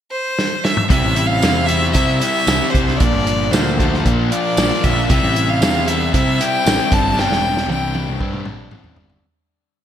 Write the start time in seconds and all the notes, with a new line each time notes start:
0.11 C5
0.39 snare
0.64 E5, snare
0.77 mid tom
0.89 C2 C3 G3 C4 E4 E5, kick, closed hi-hat
1.05 A1
1.15 C4 E4, closed hi-hat
1.27 F5
1.41 E2 G3 C4 E4, snare, closed hi-hat, tambourine
1.66 C4 E4 E5, closed hi-hat
1.71 G3
1.82 snare
1.92 C3 G3 C4 E5, kick, closed hi-hat
1.96 E4
2.18 E4 E5, closed hi-hat
2.23 C4
2.47 C2 G3 C4 E4, snare, closed hi-hat, tambourine
2.71 C2 C3 E4 C5, kick
2.75 C4, closed hi-hat
2.88 snare
2.97 A#1 A#2 F3 D5, kick, closed hi-hat
3.02 A#3 D4
3.13 G1
3.26 A#3 D4, closed hi-hat
3.51 D2 F3 A#3 C5, snare, closed hi-hat, tambourine
3.56 D4
3.79 F3 A#3 D4, kick, closed hi-hat
3.94 snare
4.05 A#2 F3 A#3 D4, kick, closed hi-hat
4.30 A#3 D4 F4 D5, closed hi-hat
4.57 A#1 F3 A#3 D4, snare, closed hi-hat, tambourine
4.83 A#1 D3 A#3 D4 E5, kick, closed hi-hat
5.09 C2 C3 G3 C4 E4 E5, kick, closed hi-hat
5.23 A1
5.36 C4 E4, closed hi-hat
5.48 F5
5.61 E2 G3 C4 E4, snare, closed hi-hat, tambourine
5.86 G3 C4 E4 E5, closed hi-hat
6.12 C3 G3 C4 E4 E5, kick, closed hi-hat
6.38 C4 E4 G5, closed hi-hat
6.64 A1 G3 C4 E4, snare, closed hi-hat, tambourine
6.90 G1 G2 G3 C4 D4 A5, kick, closed hi-hat
7.14 G1 G2 G3 C4 D4
7.19 G5, snare
7.30 E1, snare
7.40 C4 D4
7.57 snare
7.67 C2 G3 C4 D4, high tom
7.71 G5
7.93 G3 C4 D4, high tom
8.08 mid tom
8.19 G2 G3 C4 D4, kick
8.33 mid tom
8.45 A#1 C4 D4, mid tom
8.71 A1 G3 C4 D4, mid tom
8.84 floor tom
8.96 G1 D3 C4 D4, floor tom
9.10 floor tom